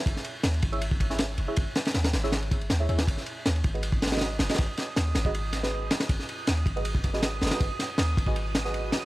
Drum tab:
RD |x---x---x-x-x-x-x---x---x---x---|x---x-x-x-x-x---x-x-x-x-x---x-x-|x---x---x-x-x-x-x---xxxxx---x-xx|x---x---x---x---x---x-------x-x-|
SD |--o-----o-------------o-o-------|----o-o-o-o-o-o-o-------o-----o-|--o-----o-----------ooooo---o-oo|----o---o---o-------o-o-----o-o-|
BD |o-----------o-----o-o-----------|o-------------------o-----------|o-----------o-----o-------------|o-------------o-----------------|

RD |x---x---x-x-x-x-x---x---x---xxx-|x---x---x---x---x---x---x---x-x-|
SD |--o-----o-------------o-o---ooo-|----o---o-----------o-o-----o---|
BD |o-----------o-----o-o-----------|o-----------o-o-----------------|